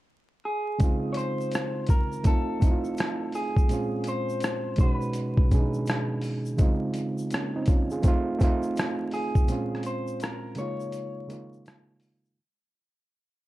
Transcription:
0.45 G#4
0.79 C#3 G#3 C4, kick, closed hi-hat, shaker
0.83 D#4 F4
1.13 C#5, closed hi-hat
1.17 C5, shaker
1.41 shaker
1.51 cross-stick, closed hi-hat, shaker
1.86 A#4, kick, closed hi-hat, shaker
2.12 shaker
2.24 A3 C4 D#4 A4, kick, closed hi-hat, shaker
2.29 F4
2.60 A3 C4 D#4, kick, closed hi-hat, shaker
2.65 E4
2.71 F4
2.84 shaker
2.97 cross-stick, closed hi-hat, shaker
3.32 G#4, open hi-hat, shaker
3.56 kick, shaker
3.68 A#2 G#3 C4 C#4, closed hi-hat, shaker
3.73 F4
4.04 closed hi-hat, shaker
4.08 C5
4.29 shaker
4.40 cross-stick, closed hi-hat, shaker
4.76 B2 G#3 C#4, kick, closed hi-hat, shaker
4.81 D#4 F#4 B4
5.02 shaker
5.13 closed hi-hat, shaker
5.37 kick
5.49 B2 G#3 C#4 D4, kick, closed hi-hat, shaker
5.54 G#4
5.59 D#4
5.74 shaker
5.86 cross-stick, closed hi-hat, shaker
6.21 open hi-hat, shaker
6.46 shaker
6.57 C#3 G#3 C4 D#4, kick, closed hi-hat, shaker
6.62 F4
6.94 closed hi-hat, shaker
7.18 shaker
7.30 A#3 C#4, cross-stick, closed hi-hat, shaker
7.56 C4 D#4
7.66 C#4 F4, kick, closed hi-hat, shaker
7.91 F4 G#4, shaker
8.03 A3 C4 D#4, kick, closed hi-hat, shaker
8.08 F4
8.39 A3 C4 D#4, kick, closed hi-hat, shaker
8.44 F4
8.63 shaker
8.77 cross-stick, closed hi-hat, shaker
9.11 G#4, open hi-hat, shaker
9.35 kick, shaker
9.47 A#2 G#3 C4 C#4, closed hi-hat, shaker
9.52 F4
9.75 cross-stick
9.83 C5, closed hi-hat, shaker
10.08 shaker
10.20 A#4, cross-stick, closed hi-hat, shaker
10.55 C#3 G#3 A#3 C#5, closed hi-hat, shaker
10.59 D#4 F4
10.80 shaker
10.92 closed hi-hat, shaker
11.27 C#3 G#3 A#3, closed hi-hat, shaker
11.31 D#4 F4
11.53 shaker
11.66 cross-stick, closed hi-hat, shaker
12.00 open hi-hat, shaker
12.25 shaker

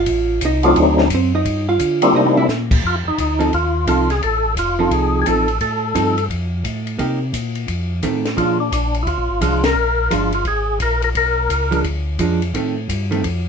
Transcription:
Already playing: F4 F5
0.06 A1, kick, ride
0.41 C2, kick, hi-hat pedal, ride
0.45 D#4 D#5
0.63 F#3 A3 C4 D4 D#4 F4 F5, ride
0.76 D2, kick, ride
0.98 snare
1.10 F#2, kick, hi-hat pedal, ride
1.14 C4 C5
1.35 D#4 D#5
1.45 G2, kick, ride
1.69 F4 F5
1.79 D3, kick, hi-hat pedal, ride
2.02 G3 A#3 C4 D4 E4, ride
2.14 C3 D#4 D#5, high tom
2.26 high tom
2.37 E4 E5, high tom
2.48 A#2, snare, hi-hat pedal
2.71 kick, crash
2.83 F2 F4, kick
3.05 F2 D#4
3.18 D2 D#4, kick, hi-hat pedal, ride
3.39 F3 C4 D#4 A4, ride
3.53 D#2 F4, kick, ride
3.87 C2 F3 C4 D#4 F4 A4, kick, hi-hat pedal, ride
4.10 G#4, snare, ride
4.22 A1 A4, kick, ride
4.56 F1 F4, kick, hi-hat pedal, ride
4.79 F3 C4 D#4 A4
4.91 C2 G#4, kick, ride
5.22 G#4
5.26 A1 F3 C4 D#4 A4, kick, hi-hat pedal, ride
5.48 ride
5.61 A2 A4, kick, ride
5.95 G2 F3 C4 D#4 A4, kick, hi-hat pedal, ride
6.18 ride
6.30 F2, kick, ride
6.64 A2, kick, hi-hat pedal, ride
6.87 ride
6.99 C3 A#3 D#4 G4, kick, ride
7.33 A#2, kick, hi-hat pedal, ride
7.55 ride
7.68 F2, kick, ride
8.03 A2 D#3 A3 C4, kick, hi-hat pedal, ride
8.25 snare, ride
8.37 A#2 F3 G#3 D4 F4, kick, ride
8.60 D4
8.72 A#1 D4, kick, hi-hat pedal, ride
8.94 ride
9.03 E4, kick
9.07 D2 F4, ride
9.18 A#1
9.29 G#1
9.41 C2 F3 G#3 D4 F4, kick, hi-hat pedal, ride
9.64 A#4, snare, ride
9.75 A#1
10.11 G1 F3 G#3 D4 F4, kick, hi-hat pedal, ride
10.32 F4, ride
10.45 G#1 G#4, kick, ride
10.80 A#1 A#4, kick, hi-hat pedal, ride
11.02 A#4, ride
11.15 B1 A#4, kick, ride
11.49 C#2, kick, hi-hat pedal, ride
11.71 F3 G#3 D4, ride
11.84 D2, kick, ride
12.19 F2 F3 G#3 D4, kick, hi-hat pedal, ride
12.42 ride
12.54 A2 D#3 A3 C4, kick, ride
12.89 G2, kick, hi-hat pedal, ride
13.11 D#3 A3 C4, ride
13.24 F2, kick, ride

